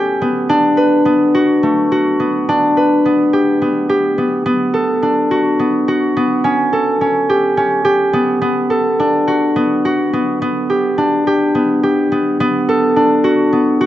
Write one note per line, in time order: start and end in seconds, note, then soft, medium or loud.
0.00 0.98 A3 medium
0.00 0.21 B3 medium
0.00 0.55 C#4 medium
0.00 1.41 G4 medium
0.00 1.55 A4 medium
0.21 1.05 B3 medium
0.49 2.48 D4 loud
0.77 2.77 B4 medium
1.05 2.19 B3 medium
1.35 1.91 F#4 medium
1.63 4.96 A3 medium
1.92 3.39 F#4 medium
2.20 3.05 B3 medium
2.49 5.02 D4 medium
2.77 4.82 B4 medium
3.05 3.61 B3 medium
3.33 3.89 G4 medium
3.62 4.17 B3 medium
3.89 5.37 G4 medium
4.18 4.45 B3 medium
4.46 5.59 B3 medium
4.74 6.72 A4 medium
5.03 6.50 D4 medium
5.31 5.88 F#4 medium
5.59 6.16 B3 medium
5.88 7.35 F#4 medium
6.17 8.13 B3 medium
6.44 7.01 C#4 medium
6.73 8.70 A4 medium
7.01 7.57 C#4 medium
7.29 7.84 G4 medium
7.57 9.06 C#4 medium
7.85 9.34 G4 medium
8.13 8.41 B3 medium
8.42 9.55 B3 loud
8.70 10.90 A4 medium
9.00 10.97 D4 medium
9.28 9.85 F#4 medium
9.56 10.13 B3 medium
9.85 10.76 F#4 medium
10.13 10.41 B3 medium
10.42 11.54 B3 medium
10.70 11.27 G4 medium
10.98 12.96 D4 medium
11.27 11.83 G4 medium
11.55 12.11 B3 medium
11.83 13.30 G4 medium
12.12 12.40 B3 medium
12.40 13.52 B3 loud
12.69 13.86 A4 medium
12.96 13.86 D4 medium
13.24 13.80 F#4 medium
13.53 13.86 B3 medium
13.81 13.86 F#4 medium